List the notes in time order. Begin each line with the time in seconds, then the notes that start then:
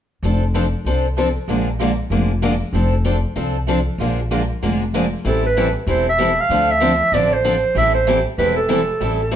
0.23 F1 F3 C4 D4 A4
0.55 F3 C4 D4 A4
0.85 C2 F3 C4 D4 A4
1.18 F3 C4 D4 A4
1.48 A#1 D3 F3 G#3 A#3 D4 F4 G#4 A#4
1.79 D3 F3 G#3 A#3 D4 F4 G#4 A#4
2.10 F1 D3 F3 G#3 A#3 D4 F4 G#4 A#4
2.42 D3 F3 G#3 A#3 D4 F4 G#4 A#4
2.73 F1 F3 C4 D4 A4
3.05 F3 C4 D4 A4
3.36 C2 F3 C4 D4 A4
3.68 F3 C4 D4 A4
3.98 A#1 D3 F3 G#3 A#3 D4 F4 G#4 A#4
4.31 D3 F3 G#3 A#3 D4 F4 G#4 A#4
4.62 F1 D3 F3 G#3 A#3 D4 F4 G#4 A#4
4.94 D3 F3 G#3 A#3 D4 F4 G#4 A#4
5.25 A1 E3 G3 C4 E4 A4
5.46 B4
5.57 E3 G3 C4 E4 A4
5.87 E1 E3 G3 C4 E4 A4 C5
6.09 E5
6.18 E3 G3 C4 E4 A4
6.40 F5
6.49 D2 D3 F3 C4 D4 A4
6.71 E5
6.80 D3 F3 C4 D4 A4
7.12 A1 D3 F3 C4 D4 A4 D5
7.33 C5
7.44 D3 F3 C4 D4 A4
7.75 A1 E3 G3 C4 E4 A4 E5
7.94 C5
8.07 E3 G3 C4 E4 A4
8.38 E1 E3 G3 C4 E4 A4 B4
8.57 A4
8.69 E3 G3 C4 E4 A4
9.01 A1 E3 G3 C4 E4 A4
9.31 E3 G3 C4 E4 A4